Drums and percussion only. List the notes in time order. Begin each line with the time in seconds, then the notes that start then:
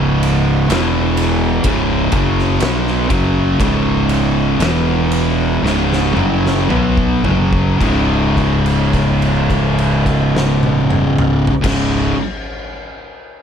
0.23 ride
0.70 snare, ride
1.17 ride
1.64 kick, ride
2.12 kick, ride
2.39 snare
2.60 snare, ride
2.87 snare
3.10 kick, ride
3.60 kick, ride
4.09 ride
4.60 snare, ride
5.11 ride
5.66 snare
5.92 snare
6.17 mid tom
6.46 snare
6.70 mid tom
6.97 kick
7.25 floor tom
7.53 kick
7.81 kick, crash
8.37 kick, crash
8.66 crash
8.93 kick, crash
9.22 crash
9.50 kick, crash
9.78 crash
10.06 kick, crash
10.37 snare
10.63 high tom
10.91 mid tom
11.18 mid tom
11.47 floor tom
11.64 kick, snare, crash